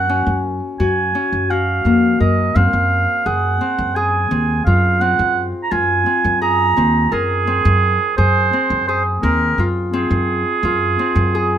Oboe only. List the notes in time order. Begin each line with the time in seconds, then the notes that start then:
Already playing: F#5
0.80 G#5
1.50 F5
2.20 D#5
2.55 F5
3.26 F#5
3.95 G#5
4.65 F5
5.01 F#5
5.63 A#5
5.72 G#5
6.41 A#5
7.13 G#4
8.17 C5
8.87 C5
9.23 A#4
9.93 G#4